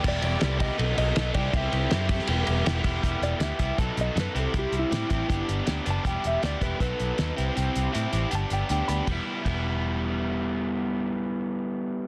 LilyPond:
<<
  \new Staff \with { instrumentName = "Clean electric guitar" } { \time 4/4 \key e \minor \tempo 4 = 159 d''8 d''4 dis''4 dis''4 d''8 | e''2. r4 | r8 d''8 e''4 r8 dis''8 b'8 a'8 | g'8 e'2 r4 a''8 |
g''8 e''8 d''8 b'8 b'2 | r2 a''8 g''4 b''8 | r1 | r1 | }
  \new Staff \with { instrumentName = "Overdriven electric guitar" } { \time 4/4 \key e \minor <g b e' g'>4 <g b e' g'>8 <g b e' g'>8 <fis b dis' a'>4 <fis b dis' a'>8 <g c' e' g'>8 | <g c' e' g'>4 <g c' e' g'>8 <g c' e' g'>8 <g b e' g'>4 <g b e' g'>8 <g b e' g'>8 | <g b e' g'>4 <g b e' g'>8 <g b e' g'>8 <fis b dis' a'>4 <fis b dis' a'>8 <g c' e' g'>8 | <g c' e' g'>4 <g c' e' g'>8 <g c' e' g'>8 <b d' g'>4 <b d' g'>8 <b d' g'>8 |
<g b e' g'>4 <g b e' g'>8 <g b e' g'>8 <fis b dis' a'>4 <fis b dis' a'>8 <c' e' g'>8 | <c' e' g'>4 <c' e' g'>8 <c' e' g'>8 <b d' g'>4 <b d' g'>8 <b d' g'>8 | <g b e'>8 r8 <g b e'>2.~ | <g b e'>1 | }
  \new Staff \with { instrumentName = "Picked electric bass" } { \clef bass \time 4/4 \key e \minor e,,8 e,,8 c,4 b,,8 b,,8 b,,8 c,8 | c,8 c,8 fis,4 e,,8 e,,8 e,,8 e,,8 | e,,8 e,,8 d,8 c,8 b,,8 b,,8 fis,8 c,8 | c,8 c,8 a,8 a,,8 g,,8 g,,8 d,8 fis,,8 |
e,,8 e,,8 d,8 e,,8 b,,8 b,,8 dis,8 c,8 | c,8 c,8 a,8 a,,8 g,,8 g,,8 d,8 d,8 | e,,8 r8 e,,2.~ | e,,1 | }
  \new DrumStaff \with { instrumentName = "Drums" } \drummode { \time 4/4 <cymc bd>8 cymr8 <cymr sn>8 <bd cymr>8 cymr8 cymr8 <cymr sn>8 <bd cymr>8 | <bd cymr>8 cymr8 <cymr sn>8 <bd cymr>16 sn16 cymr8 cymr8 <cymr sn>8 <bd cymr>8 | <hh bd>8 hh8 <hh sn>8 <hh bd>8 <hh bd>8 hh8 <hh sn>8 hh8 | <hh bd>8 hh8 <hh sn>8 <hh bd>8 <hh bd>8 hh8 <hh sn>8 hh8 |
<hh bd>8 hh8 <hh sn>8 <hh bd>8 <hh bd>8 hh8 <hh sn>8 hh8 | hh8 hh8 hh8 hh8 hh8 hh8 hh8 hh8 | <bd cymr>4 <bd cymr>4 r4 r4 | r4 r4 r4 r4 | }
>>